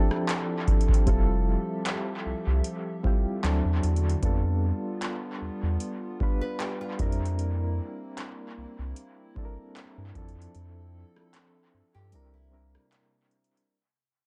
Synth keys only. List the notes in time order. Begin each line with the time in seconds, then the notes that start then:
Already playing: F3 C4 D4 E4 G4 A4
1.06 G3 C4 E4 F4 A4
3.03 G3 C4 E4 F4 G4
3.43 F#3 C4 D4 E4 A4
4.22 G3 B3 D4 F4 A4
6.20 G3 B3 D4 F4 B4
6.99 G3 C4 D4 E4 A#4
9.35 G3 C4 D4 E4 A4
9.45 A#4
10.14 F3 C4 D4 E4 A4
12.12 G3 C4 D4 E4 A#4
12.51 G3 C4 D4 E4 A#4